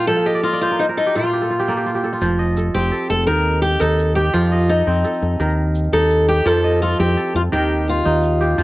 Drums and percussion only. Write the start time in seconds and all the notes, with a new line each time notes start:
2.21 shaker
2.57 shaker
2.92 shaker
3.10 shaker
3.28 shaker
3.37 shaker
3.63 shaker
3.72 shaker
3.99 shaker
4.17 shaker
4.34 shaker
4.69 shaker
5.04 shaker
5.13 shaker
5.22 shaker
5.40 shaker
5.49 shaker
5.75 shaker
5.84 shaker
6.10 shaker
6.28 shaker
6.46 shaker
6.82 shaker
7.17 shaker
7.26 shaker
7.35 shaker
7.53 shaker
7.61 shaker
7.87 shaker
7.97 shaker
8.23 shaker
8.41 shaker
8.59 shaker